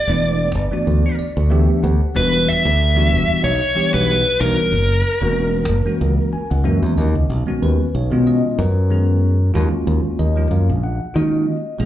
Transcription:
Already playing: lead electric guitar D5
0.08 fingered electric bass E1, tine electric piano E3 A3 B3 D4 E4
0.55 fingered electric bass G1
0.71 tine electric piano E3 A3 B3 D4 F#4, muted fingered electric bass stroke
0.87 fingered electric bass D2
1.19 tine electric piano D5, muted fingered electric bass stroke
1.37 fingered electric bass D2
1.50 tine electric piano E3 A3 B3 D4 G4 E5
1.83 fingered electric bass D2, tine electric piano F#5
2.02 muted fingered electric bass stroke
2.15 fingered electric bass E1, tine electric piano E3 G3 B3 D4 F#4, lead electric guitar B4
2.48 lead electric guitar E5
2.65 fingered electric bass D2
2.95 tine electric piano E3 G3 B3 D4 F#4
3.12 fingered electric bass E1
3.29 muted fingered electric bass stroke
3.44 fingered electric bass B1, lead electric guitar C#5
3.75 tine electric piano E3 G3 B3 D4 G4, muted fingered electric bass stroke
3.94 fingered electric bass B1, lead electric guitar B4
4.40 fingered electric bass B1, tine electric piano E3 G3 B3 D4 F#4, lead electric guitar A#4
4.58 muted fingered electric bass stroke
4.72 fingered electric bass F#1
5.21 fingered electric bass E1, tine electric piano E3 G#3 A#3 C#4 F#4
5.68 fingered electric bass F#1
5.85 tine electric piano E3 G#3 A#3 C#4 F#4, muted fingered electric bass stroke
6.01 fingered electric bass C#2
6.33 tine electric piano G#5, muted fingered electric bass stroke
6.51 fingered electric bass C#2, tine electric piano F#5
6.64 fingered electric bass F#2, tine electric piano E3 G#3 A#3 C#4 F#4 E5
6.82 fingered electric bass E2
6.98 fingered electric bass D#2, tine electric piano D#5
7.15 fingered electric bass C#2
7.30 fingered electric bass B1
7.46 tine electric piano D#3 G#3 B3 C#4 F#4
7.62 fingered electric bass D#2, tine electric piano B4
7.95 fingered electric bass B1, tine electric piano C#5
8.11 fingered electric bass B2, tine electric piano D#3 G#3 B3 C#4 F4
8.27 tine electric piano D#5
8.59 fingered electric bass F#2, tine electric piano B4
8.90 tine electric piano D#3 G#3 B3 C#4 G#4
9.54 fingered electric bass D#2, tine electric piano G#3 A#3 C#4 F4 F#4
9.72 muted fingered electric bass stroke
9.87 fingered electric bass D#2
10.04 muted fingered electric bass stroke
10.19 fingered electric bass D#2, tine electric piano D#5
10.36 tine electric piano F3 G#3 A#3 C#4 F4
10.51 fingered electric bass F#2, tine electric piano F5
10.69 fingered electric bass A#1
10.84 tine electric piano F#5
11.14 fingered electric bass D#3, tine electric piano G#3 A#3 C#4 F4 F#4 D#5
11.79 fingered electric bass A#1, tine electric piano F3 G#3 A#3 C#4 G#4

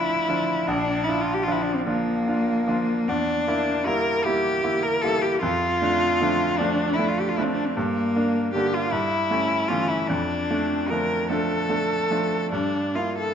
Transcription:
Already playing: grand piano D2 F3 D4 F4, cello E4
0.28 grand piano F3 D4 F4
0.67 grand piano A#1, cello D4
1.04 cello E4
1.08 grand piano D4 F4
1.21 cello F4
1.34 cello G4
1.43 cello F4
1.48 grand piano F3 D4 F4, cello E4
1.62 cello D4
1.75 cello C4
1.86 grand piano F3 D4 F4, cello A#3
2.28 grand piano D4 F4
2.67 grand piano F3 D4 F4
3.08 grand piano E2, cello D4
3.47 grand piano A#3 E4
3.86 grand piano G3 A#3 E4, cello A#4
4.25 grand piano G3 A#3 E4, cello G4
4.63 grand piano A#3 E4
4.83 cello A#4
5.02 grand piano G3 A#3 E4, cello A4
5.21 cello G4
5.41 grand piano F2, cello F4
5.82 grand piano A3 D4
6.21 grand piano F3 A3 D4
6.58 grand piano F3 A3 D4, cello D4
6.93 cello E4
6.99 grand piano A3 D4
7.08 cello F4
7.20 cello G4
7.29 cello F4
7.37 grand piano F3 A3 D4, cello E4
7.45 cello C4
7.54 cello D4
7.65 cello C4
7.76 grand piano G2, cello A#3
8.16 grand piano A#3 D4
8.53 grand piano D3 A#3 D4, cello G4
8.74 cello F4
8.92 grand piano G2, cello E4
9.31 grand piano A3 C#4
9.68 grand piano E3 A3 C#4, cello F4
9.88 cello E4
10.07 grand piano F2, cello D4
10.50 grand piano A3 D4
10.89 grand piano F3 A3 D4, cello A#4
11.28 grand piano F3 A3 D4, cello A4
11.69 grand piano A3 D4
12.11 grand piano F3 A3 D4
12.51 grand piano G2, cello D4
12.95 grand piano A#3 E4, cello F4
13.18 cello A4

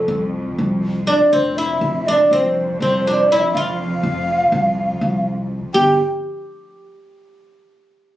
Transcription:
Already playing: cello section F2, oud A3, ney A4
0.08 upright bass C2
0.58 upright bass C2
1.07 oud D4, ney D5
1.32 upright bass F1, cello section F2, oud C4, ney C5 C#5
1.57 oud E4, ney E5
1.81 upright bass F1
2.07 oud D4, ney D5
2.24 ney D5
2.31 upright bass C2, oud C4, ney C5
2.80 upright bass C2, oud C4, ney C5
3.07 oud D4
3.29 oud E4, ney E5
3.54 upright bass F1, oud F4, ney F5
4.03 upright bass F1
4.52 upright bass C2
5.01 upright bass C2
5.74 upright bass G1, oud G4, ney G5

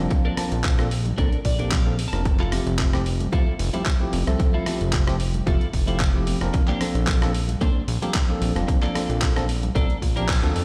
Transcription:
Already playing: tine electric piano F3 A#3
0.00 tine electric piano C4 D4
0.10 muted clean electric guitar stroke, kick, closed hi-hat
0.25 clean electric guitar D4 A4 A#4, high bongo
0.37 tine electric piano F3 A#3 C4 D4 A5, cross-stick, open hi-hat, high conga
0.52 analog synth bass A#1, closed hi-hat
0.64 kick, clap, closed hi-hat
0.79 tine electric piano F3 A#3 C4 D4 A4, muted clean electric guitar stroke, cross-stick, closed hi-hat, high conga
0.91 open hi-hat
1.05 closed hi-hat, high bongo, low conga
1.18 analog synth bass A#1, tine electric piano F3 A#3 C4 D4 A4, clean electric guitar D4 A4 A#4, kick, closed hi-hat, high conga
1.32 closed hi-hat
1.45 analog synth bass A#1, clean electric guitar D5, kick, open hi-hat
1.59 tine electric piano F3 A#3 C4 D4 G4, clean electric guitar D4 A4 A#4, closed hi-hat, high conga
1.71 clean electric guitar F5, kick, clap, closed hi-hat
1.86 tine electric piano F3 A#3 C4 D4 A4, muted clean electric guitar stroke
1.99 open hi-hat, high bongo, high conga
2.08 clean electric guitar A5
2.13 analog synth bass F1, tine electric piano F3 A#3 C4 D4 A#4, cross-stick, closed hi-hat
2.25 muted clean electric guitar stroke, kick, closed hi-hat
2.39 clean electric guitar E4 F4 A4, clap, high bongo
2.52 tine electric piano F3 A3 C4 G4 E5, cross-stick, open hi-hat, high conga
2.66 analog synth bass F1, closed hi-hat
2.79 kick, clap, closed hi-hat
2.93 tine electric piano F3 A3 C4 E4 G4, muted clean electric guitar stroke, cross-stick, closed hi-hat, high conga
3.06 open hi-hat
3.20 closed hi-hat, high bongo, low conga
3.32 tine electric piano F3 A3 C4 E4 G4, clean electric guitar E4 F4 A4, kick, closed hi-hat, high conga
3.59 analog synth bass F1, open hi-hat
3.73 tine electric piano F3 A3 C4 E4 G4, clean electric guitar E4 F4 A4, closed hi-hat, high conga, low conga
3.86 kick, clap, closed hi-hat
4.00 tine electric piano F3 A3 C4 E4 G4, muted clean electric guitar stroke
4.13 analog synth bass F1, open hi-hat, high conga
4.27 analog synth bass C2, tine electric piano F3 A3 C4 A4 E5, cross-stick, closed hi-hat, low conga
4.39 muted clean electric guitar stroke, kick, closed hi-hat
4.54 clean electric guitar E4 F4 A4, high bongo
4.66 tine electric piano F3 A3 C4 G4 E5, cross-stick, open hi-hat, high conga
4.81 analog synth bass F1, closed hi-hat
4.93 kick, clap, closed hi-hat
5.07 tine electric piano F3 A3 C4 E4 G4, muted clean electric guitar stroke, cross-stick, closed hi-hat, high conga
5.20 open hi-hat
5.34 closed hi-hat, high bongo, low conga
5.46 analog synth bass F1, tine electric piano F3 A3 C4 E4 G4, clean electric guitar E4 F4 A4, kick, closed hi-hat, high conga
5.61 closed hi-hat
5.73 analog synth bass F1, kick, open hi-hat
5.87 tine electric piano F3 A3 C4 E4 G4, clean electric guitar E4 F4 A4, closed hi-hat, high conga
6.00 kick, clap, closed hi-hat
6.14 tine electric piano F3 A3 C4 E4 G4, muted clean electric guitar stroke
6.26 open hi-hat, high bongo, high conga
6.41 analog synth bass F1, tine electric piano F3 A#3 C4 D4 A#4, cross-stick, closed hi-hat
6.54 muted clean electric guitar stroke, kick, closed hi-hat
6.67 clean electric guitar A#3 D4 G4, clap, high bongo
6.80 tine electric piano F3 A#3 C4 D4 A4, cross-stick, open hi-hat, high conga
6.95 analog synth bass A#1, closed hi-hat
7.07 kick, clap, closed hi-hat
7.22 tine electric piano F3 A#3 C4 D4 A4, muted clean electric guitar stroke, cross-stick, closed hi-hat, high conga
7.34 open hi-hat
7.48 closed hi-hat, high bongo, low conga
7.61 tine electric piano F3 A#3 C4 D4 A4, clean electric guitar A#3 D4 C5, kick, closed hi-hat, high conga
7.88 analog synth bass A#1, open hi-hat
8.02 tine electric piano F3 A#3 C4 D4 G4, clean electric guitar A#3 D4 A4, closed hi-hat, high conga, low conga
8.14 kick, clap, closed hi-hat
8.29 tine electric piano F3 A#3 C4 D4 A4, muted clean electric guitar stroke
8.41 analog synth bass A#1, open hi-hat, high conga
8.55 analog synth bass F1, tine electric piano F3 A#3 C4 D4, cross-stick, closed hi-hat, low conga
8.68 muted clean electric guitar stroke, kick, closed hi-hat
8.82 clean electric guitar A#3 D4 A4, clap, closed hi-hat, high bongo
8.94 tine electric piano F3 A#3 C4 D4 A4, cross-stick, open hi-hat, high conga
9.09 analog synth bass A#1, closed hi-hat
9.22 kick, clap, closed hi-hat
9.36 tine electric piano F3 A#3 C4 D4 A4, muted clean electric guitar stroke, cross-stick, closed hi-hat, high conga
9.49 open hi-hat
9.63 closed hi-hat, high bongo, low conga
9.75 analog synth bass A#1, tine electric piano F3 A#3 C4 D4 A4, clean electric guitar A#3 D4 A4, kick, closed hi-hat, high conga
9.90 closed hi-hat
10.02 analog synth bass A#1, kick, open hi-hat
10.16 tine electric piano F3 A#3 C4 D4 G4, clean electric guitar A#3 D4 A#4, closed hi-hat, high conga
10.29 kick, clap, closed hi-hat
10.43 analog synth bass D2, tine electric piano F3 A#3 C4 D4 A4, muted clean electric guitar stroke, closed hi-hat
10.55 analog synth bass F2, open hi-hat, high bongo, high conga

